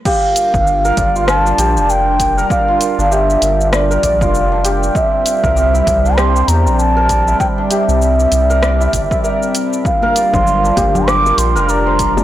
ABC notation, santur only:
X:1
M:4/4
L:1/16
Q:"Swing 16ths" 1/4=98
K:Gdor
V:1 name="Santur"
G z4 B d F2 D G z4 B | d F2 D G z4 B d F2 D G z | z3 B d E2 D G z4 B d E- | E D G z4 B d E z e B z3 |
z B d c z D G z4 B d c z D |]